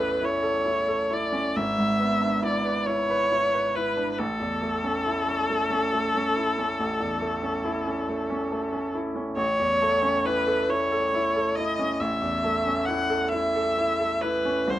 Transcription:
Already playing: A1 E2 A3 C#4 E4 B4
0.00 A4
0.21 E4 C#5
0.43 A4
0.66 E4
0.88 A4
1.11 E4 D5
1.32 C#4
1.56 G#1 E5
1.78 G#2
1.99 B3
2.21 D4
2.42 E4 D5
2.65 B4
2.86 E4 C#5
3.10 B4
3.32 E4
3.54 B4
3.75 E4 B4
3.97 D4
4.11 B4
4.18 A1 A4
4.40 E2
4.62 A3
4.84 C#4
5.06 E4
5.28 C#4
5.50 A3
5.71 C#4
5.93 A3
6.15 C#4
6.37 E4
6.59 C#4
6.80 A1
7.00 E2
7.21 A3
7.43 C#4
7.65 E4
7.87 C#4
8.08 A3
8.30 C#4
8.52 A3
8.73 C#4
8.95 E4
9.16 C#4
9.36 A1 C#5
9.59 E2
9.82 A3
10.03 C#4
10.25 E4 B4
10.47 A4
10.69 E4 C#5
10.92 A4
11.14 E4
11.36 A4
11.56 E4 D#5
11.79 C#4
12.00 A1 E5
12.22 E2
12.44 A3
12.66 C#4
12.85 E4 F#5
13.10 A4
13.29 E4 E5
13.55 A4
13.78 E4
14.00 A4
14.22 E4 B4
14.45 C#4
14.68 C2 C5

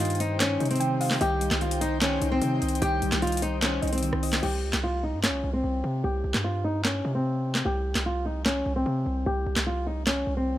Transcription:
Already playing: G2 G3 D#4 C5 D#5 G5
0.00 D#3 F4
0.05 closed hi-hat
0.10 closed hi-hat
0.15 closed hi-hat
0.20 D#4 C5, closed hi-hat
0.40 D#3 C#4, snare, clap, closed hi-hat
0.60 C3 D#4, closed hi-hat
0.66 closed hi-hat
0.71 C4, closed hi-hat
0.76 closed hi-hat
0.80 D#3 G5, closed hi-hat
1.00 D#5 F5, open hi-hat
1.11 snare, clap
1.21 C2 D#3 D#4 G4 C5 D#5 G5, closed hi-hat
1.41 G3, closed hi-hat
1.51 C2, snare, clap
1.61 D#3 F4, closed hi-hat
1.71 closed hi-hat
1.81 D#4 C5, closed hi-hat
2.01 D#3 C#4, snare, clap, closed hi-hat
2.22 C2 D#4, closed hi-hat
2.32 C4
2.42 C3 D#3, closed hi-hat
2.62 C2 D#5, closed hi-hat
2.69 closed hi-hat
2.75 closed hi-hat
2.82 C2 D#3 G4 G5, closed hi-hat
3.02 C2 G3, closed hi-hat
3.12 C2, snare, clap, closed hi-hat
3.22 D#3 F4, closed hi-hat
3.27 closed hi-hat
3.32 closed hi-hat
3.37 closed hi-hat
3.42 D#4 C5, closed hi-hat
3.62 D#3 C#4, snare, clap, closed hi-hat
3.82 C2 D#4 D#5, closed hi-hat
3.88 closed hi-hat
3.92 C4, closed hi-hat
3.98 closed hi-hat
4.03 D#3, closed hi-hat
4.13 C2, cross-stick
4.23 D#5, open hi-hat
4.33 snare, clap
4.43 C2 G4, crash
4.63 C#2
4.73 C2, snare, clap
4.83 F4
5.03 D#4
5.14 G2
5.23 C#4, snare, clap
5.29 C2
5.44 C2
5.53 C4
5.64 C2
5.84 C3
6.04 C2 G4
6.24 C2
6.34 G2, snare, clap
6.44 F4
6.64 D#4
6.85 C#4, snare, clap
7.05 C3
7.15 C4
7.55 snare, clap
7.65 C2 G4
7.95 C2, snare, clap
8.06 F4
8.26 D#4
8.45 C#4, snare, clap
8.66 C2
8.76 C4
8.86 C3
9.06 C2
9.26 C2 G4
9.46 C2
9.56 C2, snare, clap
9.67 F4
9.87 D#4
10.07 C#4, snare, clap
10.27 C2
10.37 C4

